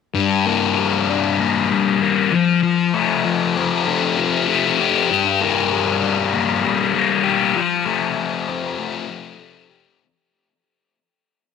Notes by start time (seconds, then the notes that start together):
0.15 G2
0.46 A#3
0.78 G3
1.09 D4
1.39 A#3
1.71 G3
2.01 A#3
2.32 F3
2.63 F3
2.94 A3
3.25 F3
3.57 C4
3.86 A3
4.18 F3
4.48 A3
4.80 G4
5.10 G2
5.41 A#3
5.72 G3
6.02 D4
6.33 A#3
6.63 G3
6.93 A#3
7.23 G4
7.56 F3
7.86 A3
8.16 F3
8.48 C4
8.78 A3
9.10 F3
9.40 A3
9.70 G4